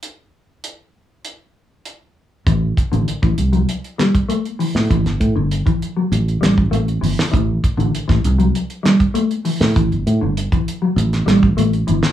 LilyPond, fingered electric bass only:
\new Staff \with { instrumentName = "Fingered electric bass" } { \clef bass \time 4/4 \key a \dorian \tempo 4 = 99 r1 | a,,8 r16 a,,16 r16 a,,16 c,8 r4. r16 a,16 | a,,16 g,,16 a,16 g,,8 r8. a,,8 a,,8 a,,8 g,,16 r16 | a,,8 r16 a,,16 r16 a,,16 c,8 r4. r16 a,16 |
a,,16 g,,16 a,16 g,,8 r8. a,,8 a,,8 a,,8 g,,16 r16 | }